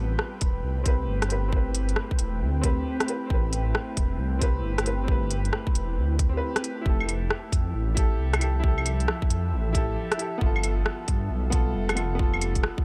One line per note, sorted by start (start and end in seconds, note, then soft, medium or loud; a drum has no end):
0.00 0.18 A1 medium
0.00 6.86 A3 medium
0.00 0.82 C4 medium
0.00 0.84 G4 medium
0.00 0.41 A4 medium
0.00 0.86 B4 medium
0.00 8.31 B4 medium
0.00 12.85 G5 medium
0.19 8.23 C4 medium
0.19 6.86 E4 medium
0.19 cross-stick loud
0.41 0.63 E1 medium
0.41 kick loud
0.41 closed hi-hat medium
0.64 1.07 C2 medium
0.84 1.27 C4 medium
0.84 1.28 G4 medium
0.84 kick loud
0.84 closed hi-hat medium
0.88 1.29 B4 loud
1.08 1.96 G1 medium
1.22 cross-stick loud
1.22 closed hi-hat soft
1.28 1.47 C4 medium
1.28 1.51 G4 medium
1.28 1.52 B4 medium
1.28 closed hi-hat medium
1.48 2.60 C4 medium
1.53 2.62 G4 medium
1.53 kick loud
1.57 2.64 B4 medium
1.75 closed hi-hat medium
1.89 closed hi-hat soft
1.96 cross-stick loud
2.11 kick loud
2.19 2.43 E1 medium
2.19 closed hi-hat medium
2.41 2.85 D2 medium
2.61 3.05 C4 loud
2.61 3.06 G4 medium
2.61 3.07 B4 loud
2.61 kick loud
2.61 closed hi-hat medium
3.00 cross-stick loud
3.00 closed hi-hat soft
3.06 3.25 C4 medium
3.06 3.28 G4 medium
3.06 3.29 B4 medium
3.06 closed hi-hat medium
3.26 3.74 A1 medium
3.26 4.37 C4 medium
3.26 4.39 G4 medium
3.30 4.41 B4 medium
3.30 kick loud
3.53 closed hi-hat medium
3.75 cross-stick loud
3.97 4.18 E1 medium
3.97 kick loud
3.97 closed hi-hat medium
4.19 4.62 C2 medium
4.39 4.82 C4 medium
4.39 4.84 G4 medium
4.39 kick loud
4.39 closed hi-hat medium
4.43 4.85 B4 loud
4.63 5.51 G1 medium
4.78 cross-stick loud
4.78 closed hi-hat soft
4.83 5.02 C4 medium
4.83 5.06 G4 medium
4.83 closed hi-hat medium
4.87 5.07 B4 medium
5.04 6.15 C4 medium
5.04 6.17 G4 medium
5.08 6.19 B4 loud
5.08 kick loud
5.31 closed hi-hat medium
5.45 closed hi-hat soft
5.53 cross-stick loud
5.67 kick loud
5.75 5.99 E1 medium
5.75 closed hi-hat medium
5.97 6.40 D2 medium
6.19 kick loud
6.19 closed hi-hat medium
6.29 6.82 C4 medium
6.33 6.84 G4 medium
6.37 6.86 B4 loud
6.56 cross-stick loud
6.56 closed hi-hat soft
6.64 closed hi-hat medium
6.81 7.93 E4 medium
6.85 7.29 F1 medium
6.85 10.42 F3 medium
6.85 7.95 G4 medium
6.85 7.97 A4 medium
6.85 kick loud
7.00 12.85 A4 medium
7.00 claves medium
7.07 11.86 E5 medium
7.07 closed hi-hat medium
7.07 claves soft
7.30 cross-stick loud
7.52 7.73 F2 medium
7.52 kick loud
7.52 closed hi-hat medium
7.75 8.18 A1 medium
7.95 8.38 E4 medium
7.95 8.39 G4 medium
7.95 kick loud
7.95 closed hi-hat soft
7.99 8.40 A4 loud
8.19 9.07 C2 medium
8.33 cross-stick medium
8.33 closed hi-hat soft
8.33 claves medium
8.39 8.58 E4 medium
8.39 8.62 G4 medium
8.39 8.63 A4 medium
8.39 closed hi-hat soft
8.39 claves soft
8.60 9.71 E4 medium
8.60 kick loud
8.64 9.73 G4 medium
8.68 9.75 A4 loud
8.78 claves medium
8.86 closed hi-hat medium
8.86 claves soft
9.00 closed hi-hat soft
9.08 cross-stick loud
9.22 kick loud
9.30 9.54 F2 medium
9.30 closed hi-hat medium
9.53 9.96 A1 loud
9.73 10.16 E4 medium
9.73 10.17 G4 medium
9.73 kick loud
9.73 closed hi-hat soft
9.77 10.18 A4 loud
10.12 cross-stick loud
10.12 closed hi-hat soft
10.18 10.39 E4 medium
10.18 10.40 G4 medium
10.18 10.41 A4 medium
10.18 closed hi-hat medium
10.38 10.85 G1 loud
10.38 12.85 G3 medium
10.38 11.49 B3 medium
10.38 11.51 F4 medium
10.38 kick loud
10.46 11.53 A4 loud
10.56 claves medium
10.64 closed hi-hat medium
10.64 claves soft
10.86 cross-stick loud
11.08 11.29 G2 medium
11.08 kick medium
11.08 closed hi-hat medium
11.31 11.74 B1 medium
11.50 11.94 B3 medium
11.50 11.95 F4 medium
11.50 11.96 A4 loud
11.50 kick loud
11.50 closed hi-hat medium
11.75 12.63 F1 medium
11.89 12.85 B4 medium
11.89 cross-stick medium
11.89 closed hi-hat soft
11.89 claves medium
11.95 12.13 B3 medium
11.95 12.17 F4 medium
11.95 12.18 A4 medium
11.95 closed hi-hat medium
11.95 claves medium
12.15 12.85 B3 medium
12.19 12.85 F4 medium
12.19 12.85 A4 loud
12.19 kick loud
12.34 claves medium
12.41 closed hi-hat medium
12.41 claves soft
12.55 kick medium
12.55 closed hi-hat soft
12.63 cross-stick loud
12.78 kick loud